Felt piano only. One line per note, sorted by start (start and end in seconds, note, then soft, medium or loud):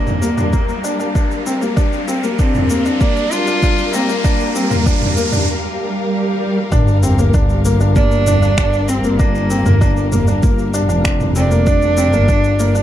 0.00 0.15 D4 medium
0.22 0.34 A#3 medium
0.37 0.50 D4 medium
0.53 0.77 A#3 medium
0.84 0.96 D4 medium
0.99 1.12 D4 medium
1.15 1.39 D4 medium
1.46 1.58 C4 medium
1.61 1.73 A#3 medium
1.76 2.01 D4 medium
2.08 2.20 C4 medium
2.23 2.35 A#3 medium
2.39 2.63 D4 medium
2.70 2.82 A#3 medium
2.86 2.97 D4 medium
3.01 3.25 A#3 medium
3.32 3.44 D4 medium
3.47 3.59 D4 medium
3.63 3.87 D4 medium
3.94 4.06 C4 medium
4.09 4.21 A#3 medium
4.24 4.48 D4 loud
4.55 4.67 C4 medium
4.71 4.83 A#3 medium
4.86 5.10 D4 medium
5.17 5.29 A#3 medium
5.32 5.45 D4 medium
6.72 6.96 D4 loud
7.03 7.15 C4 medium
7.18 7.30 A#3 medium
7.34 7.58 D4 medium
7.65 7.77 A#3 medium
7.80 7.92 D4 medium
7.96 8.20 A#3 medium
8.27 8.39 D4 medium
8.42 8.54 D4 medium
8.58 8.81 D4 medium
8.89 9.01 C4 medium
9.04 9.16 A#3 medium
9.19 9.43 D4 medium
9.50 9.62 C4 medium
9.66 9.78 A#3 medium
9.81 10.05 D4 medium
10.12 10.24 A#3 medium
10.28 10.40 D4 medium
10.42 10.67 A#3 medium
10.74 10.86 D4 medium
10.89 11.01 D4 medium
11.04 11.29 D4 medium
11.36 11.48 C4 medium
11.51 11.63 A#3 medium
11.67 11.91 D4 loud
11.97 12.09 C4 medium
12.13 12.25 A#3 medium
12.28 12.52 D4 medium
12.59 12.71 A#3 medium
12.75 12.83 D4 medium